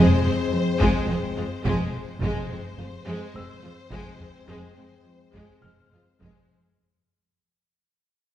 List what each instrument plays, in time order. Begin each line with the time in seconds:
Already playing: cello section F2, viola section G#3, violin section G#3 C5, french horn section G#3 C4
0.24 cello section F2, viola section G#3, violin section C4
0.52 cello section F3
0.79 cello section F2, viola section G#3, violin section G#3, taiko
1.07 double bass section F1, cello section F2 F3, viola section G#3, violin section C4
1.37 cello section F2, viola section G#3, violin section F4
1.64 double bass section F1, cello section F2, viola section G#3, violin section G#3, taiko
2.21 double bass section F1, cello section F2, french horn section G#3 C4, viola section G#3, violin section G#3 C5, taiko
2.50 cello section F2, viola section G#3, violin section C4
2.78 double bass section F1, cello section F2 F3, viola section G#3, violin section F4
3.07 cello section F2, violin section G#3, viola section G#3
3.35 double bass section F1, cello section F2, viola section G#3, violin section C4, grand piano E6
3.63 cello section F2, viola section G#3, violin section F4
3.91 double bass section F1, cello section F2, viola section G#3, violin section G#3, taiko
4.19 cello section F2, viola section G#3, violin section C4, taiko low-mid
4.47 double bass section F1, cello section F2, viola section G#3, violin section G#3
4.76 cello section F2, viola section G#3, violin section C4
5.05 cello section F3
5.34 cello section F2, viola section G#3, violin section G#3, taiko
5.62 double bass section F1, cello section F2 F3, viola section G#3, violin section C4, grand piano F6
5.91 cello section F2, viola section G#3, violin section F4
6.20 double bass section F1, cello section F2, viola section G#3, violin section G#3, taiko